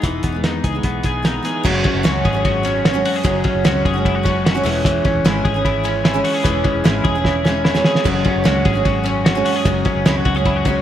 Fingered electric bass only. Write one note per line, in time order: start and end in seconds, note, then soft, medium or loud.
0.03 0.20 E1 medium
0.24 0.41 E1 medium
0.42 0.60 E2 medium
0.64 0.81 C#2 medium
0.84 1.01 B1 medium
1.05 1.39 B1 medium
1.65 1.82 F#1 loud
1.95 2.03 F#1 loud
2.04 2.22 C#2 medium
2.25 3.01 G#1 medium
3.25 3.42 F#1 loud
3.55 3.63 F#1 loud
3.65 3.82 C#2 medium
3.86 4.61 F#1 medium
4.65 4.99 E1 loud
5.15 5.23 E1 loud
5.24 5.41 G#1 medium
5.45 6.21 G#1 loud
6.45 6.62 E1 loud
6.75 6.83 E1 medium
6.85 7.02 G#1 medium
7.05 7.81 E1 loud
8.05 8.22 F#1 loud
8.36 8.44 F#1 loud
8.46 8.63 C#2 medium
8.66 9.42 G#1 loud
9.65 9.83 F#1 loud
9.95 10.04 F#1 loud
10.05 10.22 C#2 medium
10.26 10.82 C#2 loud